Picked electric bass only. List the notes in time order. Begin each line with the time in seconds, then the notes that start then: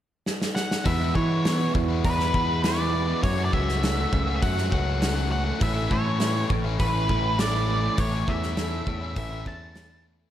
0.86 E2
1.15 E3
1.75 E2
2.04 E2
2.34 E2
3.23 F#2
3.53 C#2
4.13 C#2
4.43 F#2
4.72 C#2
5.61 A1
5.91 A2
6.50 A1
6.80 A1
7.10 A1
7.98 A1
8.28 E2
8.87 E2
9.17 A1
9.46 E2